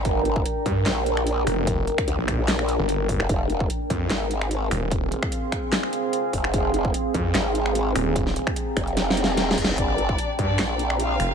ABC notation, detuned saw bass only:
X:1
M:4/4
L:1/16
Q:"Swing 16ths" 1/4=148
K:Fdor
V:1 name="Detuned saw bass" clef=bass
z6 G,,2 z6 F,,,2- | F,,,2 z3 B,,,2 z4 G,,,4 z | z6 F,,2 z6 E,,,2- | E,,,2 z12 z2 |
z6 F,,2 z6 E,,,2- | E,,,2 z12 z2 | z6 G,,2 z6 F,,,2 |]